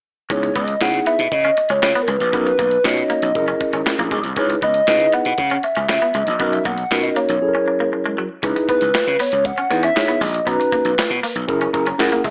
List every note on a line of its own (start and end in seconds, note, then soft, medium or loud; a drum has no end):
0.30 0.48 C#2 medium
0.30 0.51 B3 medium
0.30 0.40 C#4 medium
0.30 0.51 D#4 medium
0.30 0.52 E4 medium
0.30 0.52 G#4 medium
0.30 0.58 C#5 loud
0.30 kick loud
0.30 closed hi-hat medium
0.43 muted clean electric guitar stroke soft
0.43 closed hi-hat medium
0.56 0.73 C#2 medium
0.56 0.65 B3 medium
0.56 0.83 D#5 loud
0.56 kick medium
0.56 closed hi-hat medium
0.68 closed hi-hat medium
0.81 0.99 C#3 medium
0.81 1.23 B3 medium
0.81 1.24 D#4 medium
0.81 1.24 E4 medium
0.81 1.24 G#4 medium
0.81 1.06 F#5 loud
0.81 snare loud
0.81 clap medium
0.81 closed hi-hat loud
0.94 closed hi-hat medium
1.06 1.16 B3 medium
1.06 1.34 E5 loud
1.06 closed hi-hat medium
1.19 1.28 B2 medium
1.19 closed hi-hat medium
1.32 1.50 C#3 medium
1.32 1.72 D#5 loud
1.32 kick loud
1.32 closed hi-hat medium
1.44 1.54 C#4 medium
1.44 closed hi-hat soft
1.57 muted clean electric guitar stroke soft
1.57 closed hi-hat medium
1.69 1.79 C#2 medium
1.69 1.79 C#4 medium
1.69 2.04 C#5 medium
1.69 closed hi-hat medium
1.82 1.91 C#3 medium
1.82 muted clean electric guitar stroke soft
1.82 snare medium
1.82 clap medium
1.82 closed hi-hat medium
1.95 2.05 B3 medium
1.95 closed hi-hat soft
2.02 2.11 A#4 medium
2.08 2.17 C#2 medium
2.08 2.17 G#3 medium
2.08 2.47 B4 medium
2.08 closed hi-hat medium
2.20 2.29 A#1 medium
2.20 closed hi-hat medium
2.33 2.51 B1 loud
2.33 2.43 B3 medium
2.33 2.54 C#4 medium
2.33 2.55 D#4 medium
2.33 2.55 F#4 medium
2.33 2.55 A#4 medium
2.33 kick loud
2.33 closed hi-hat medium
2.47 2.87 B4 medium
2.47 muted clean electric guitar stroke soft
2.47 closed hi-hat medium
2.59 2.77 B1 medium
2.59 2.68 A#3 medium
2.59 kick medium
2.59 closed hi-hat medium
2.71 closed hi-hat medium
2.84 3.02 B2 medium
2.84 3.27 C#4 medium
2.84 3.27 D#4 medium
2.84 3.27 F#4 medium
2.84 3.27 C#5 medium
2.84 4.12 D#5 loud
2.84 snare loud
2.84 clap medium
2.84 closed hi-hat loud
2.97 closed hi-hat medium
3.10 3.19 A#3 medium
3.10 closed hi-hat medium
3.22 3.31 B1 medium
3.22 closed hi-hat medium
3.35 3.53 F#1 medium
3.35 4.16 C#4 medium
3.35 4.16 E4 medium
3.35 4.16 G#4 medium
3.35 4.17 A#4 medium
3.35 kick loud
3.35 closed hi-hat medium
3.48 3.57 C#4 medium
3.48 closed hi-hat soft
3.61 muted clean electric guitar stroke soft
3.61 kick medium
3.61 closed hi-hat medium
3.73 3.82 G#1 medium
3.73 3.83 C#4 medium
3.73 closed hi-hat medium
3.86 muted clean electric guitar stroke soft
3.86 snare medium
3.86 clap medium
3.86 closed hi-hat medium
3.99 4.07 A#1 medium
3.99 4.08 A#3 medium
3.99 closed hi-hat soft
4.11 4.20 B1 medium
4.11 4.21 G#3 medium
4.11 kick medium
4.11 closed hi-hat medium
4.24 4.33 C2 medium
4.24 closed hi-hat soft
4.36 4.54 C#2 medium
4.36 4.47 C#4 medium
4.36 4.58 D#4 medium
4.36 4.58 E4 medium
4.36 4.58 G#4 medium
4.36 4.58 B4 medium
4.36 4.49 C#5 medium
4.36 kick loud
4.36 closed hi-hat medium
4.50 muted clean electric guitar stroke soft
4.50 closed hi-hat medium
4.62 4.80 C#2 medium
4.62 4.72 B3 medium
4.62 5.15 D#5 loud
4.62 kick medium
4.62 closed hi-hat medium
4.74 closed hi-hat medium
4.87 5.05 C#3 medium
4.87 5.30 D#4 medium
4.87 5.30 E4 medium
4.87 5.30 G#4 medium
4.87 5.30 B4 medium
4.87 snare loud
4.87 clap medium
4.87 closed hi-hat medium
5.00 closed hi-hat medium
5.12 5.23 B3 medium
5.12 5.65 F#5 loud
5.12 closed hi-hat medium
5.25 5.34 B2 medium
5.25 closed hi-hat medium
5.38 5.56 C#3 medium
5.38 kick loud
5.38 closed hi-hat medium
5.50 5.61 C#4 medium
5.50 closed hi-hat soft
5.63 6.16 E5 loud
5.63 muted clean electric guitar stroke soft
5.63 closed hi-hat medium
5.75 5.85 C#2 medium
5.75 5.86 C#4 medium
5.75 closed hi-hat medium
5.89 5.98 C#3 medium
5.89 muted clean electric guitar stroke soft
5.89 snare medium
5.89 clap medium
5.89 closed hi-hat medium
6.02 6.11 B3 medium
6.02 closed hi-hat soft
6.14 6.23 C#2 medium
6.14 6.24 G#3 medium
6.14 6.55 D#5 medium
6.14 closed hi-hat medium
6.27 6.36 A#1 medium
6.27 closed hi-hat medium
6.40 6.57 B1 loud
6.40 6.50 B3 medium
6.40 6.61 C#4 medium
6.40 6.61 D#4 medium
6.40 6.62 F#4 medium
6.40 6.62 A#4 medium
6.40 kick loud
6.40 closed hi-hat medium
6.53 6.67 E5 medium
6.53 muted clean electric guitar stroke soft
6.53 closed hi-hat medium
6.65 6.83 B1 medium
6.65 6.75 A#3 medium
6.65 7.03 F#5 loud
6.65 kick loud
6.65 closed hi-hat medium
6.78 closed hi-hat medium
6.91 7.09 B2 medium
6.91 7.34 C#4 medium
6.91 7.34 D#4 medium
6.91 7.34 F#4 medium
6.91 7.34 A#4 medium
6.91 snare loud
6.91 clap medium
6.91 closed hi-hat loud
7.03 7.18 D#5 medium
7.03 closed hi-hat medium
7.16 7.26 A#3 medium
7.16 8.18 C#5 medium
7.16 closed hi-hat medium
7.29 7.38 B1 medium
7.29 closed hi-hat medium
7.42 8.23 F#3 medium
7.42 8.23 C#4 medium
7.42 8.23 E4 medium
7.42 8.23 G#4 medium
7.42 7.48 A4 medium
7.48 8.26 A#4 medium
7.55 7.64 C#4 medium
7.68 muted clean electric guitar stroke soft
7.80 7.90 A#3 medium
7.93 muted clean electric guitar stroke soft
8.06 8.15 G#3 medium
8.18 8.28 F#3 medium
8.43 8.52 C#2 loud
8.43 8.53 C#4 medium
8.43 8.86 D#4 medium
8.43 8.86 E4 medium
8.43 8.86 G#4 medium
8.43 8.86 B4 medium
8.43 kick loud
8.43 closed hi-hat medium
8.56 muted clean electric guitar stroke soft
8.56 closed hi-hat medium
8.69 8.79 B3 medium
8.69 9.17 B4 loud
8.69 kick loud
8.69 closed hi-hat medium
8.81 8.91 C#2 medium
8.81 closed hi-hat medium
8.94 muted slap bass stroke soft
8.94 snare loud
8.94 clap medium
8.94 closed hi-hat loud
9.07 9.16 C#3 medium
9.07 closed hi-hat medium
9.19 9.29 B3 medium
9.19 9.47 C#5 loud
9.19 open hi-hat medium
9.32 9.50 C#2 medium
9.32 closed hi-hat medium
9.45 9.83 F#5 loud
9.45 kick loud
9.45 closed hi-hat medium
9.57 9.67 C#4 medium
9.57 closed hi-hat soft
9.70 9.88 E2 medium
9.70 9.81 D#4 medium
9.70 9.81 E4 medium
9.70 9.81 G#4 medium
9.70 9.81 B4 medium
9.70 muted clean electric guitar stroke soft
9.70 closed hi-hat medium
9.83 9.93 C#4 medium
9.83 10.23 E5 loud
9.83 closed hi-hat medium
9.96 10.17 D#4 medium
9.96 10.17 E4 medium
9.96 10.17 G#4 medium
9.96 10.17 C#5 medium
9.96 muted clean electric guitar stroke soft
9.96 snare loud
9.96 clap medium
9.96 closed hi-hat medium
10.08 10.18 B3 medium
10.08 closed hi-hat soft
10.21 10.39 A#1 medium
10.21 10.31 G#3 medium
10.21 10.49 D#5 medium
10.21 open hi-hat medium
10.34 closed hi-hat medium
10.46 10.56 B1 loud
10.46 10.56 B3 medium
10.46 10.89 C#4 medium
10.46 10.89 D#4 medium
10.46 10.89 F#4 medium
10.46 11.49 B4 medium
10.46 10.90 A#5 medium
10.46 kick loud
10.46 closed hi-hat medium
10.60 muted clean electric guitar stroke soft
10.60 closed hi-hat medium
10.72 10.82 A#3 medium
10.72 kick medium
10.72 closed hi-hat medium
10.85 10.94 B1 medium
10.85 closed hi-hat medium
10.98 muted slap bass stroke soft
10.98 snare loud
10.98 clap medium
10.98 closed hi-hat loud
11.10 11.19 B2 loud
11.10 closed hi-hat medium
11.23 11.33 A#3 medium
11.23 open hi-hat medium
11.35 11.44 B1 medium
11.35 closed hi-hat medium
11.48 11.66 F#1 medium
11.48 11.69 C#4 loud
11.48 11.69 E4 medium
11.48 11.69 G#4 medium
11.48 11.69 A#4 loud
11.48 kick loud
11.48 closed hi-hat medium
11.61 11.71 C#4 medium
11.61 closed hi-hat soft
11.73 11.92 F#1 medium
11.73 11.84 C#4 medium
11.73 11.84 E4 medium
11.73 11.84 G#4 medium
11.73 11.85 A#4 medium
11.73 11.97 A#5 medium
11.73 muted clean electric guitar stroke soft
11.73 kick medium
11.73 closed hi-hat medium
11.86 11.96 C#4 medium
11.86 closed hi-hat medium
11.98 12.08 F#2 medium
11.98 12.20 C#4 medium
11.98 12.20 E4 medium
11.98 12.21 G#4 medium
11.98 12.21 A#4 loud
11.98 12.23 F#5 medium
11.98 muted clean electric guitar stroke soft
11.98 snare loud
11.98 clap medium
11.98 closed hi-hat medium
12.12 12.22 A#3 medium
12.12 closed hi-hat soft
12.24 12.30 F#1 medium
12.24 12.30 G#3 medium
12.24 12.30 E5 medium
12.24 kick medium
12.24 open hi-hat medium